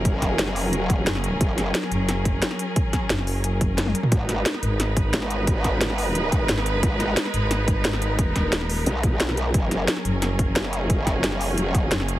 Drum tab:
HH |x-x-x-o-x-x-x-x-|x-x-x-x-x-x-x-x-|x-x-x-o-x-x-x-x-|x-x-x-x-x-x-x-x-|
SD |--o-oo------oo--|--o-oo--o---oo--|--o-oo------o---|--o-oo--o---oo--|
T1 |----------------|----------------|-------------o--|----------------|
T2 |----------------|----------------|---------------o|----------------|
BD |o-o-------o-----|o---------o-----|o-o-------o-----|o---------o-----|

HH |x-x-x-o-x-x-x-x-|x-x-x-x-x-x-x-x-|x-x-x-o-x-x-x-x-|x-x-x-x-x-x-x-x-|
SD |--o-oo------oo--|--o-oo--o---oo--|--o-oo------oo--|--o-oo--o---oo--|
T1 |----------------|----------------|----------------|----------------|
T2 |----------------|----------------|----------------|----------------|
BD |o-o-------o-----|o---------o-----|o-o-------o-----|o---------o-----|

HH |x-x-x-o-x-x-x-x-|
SD |--o-oo------oo--|
T1 |----------------|
T2 |----------------|
BD |o-o-------o-----|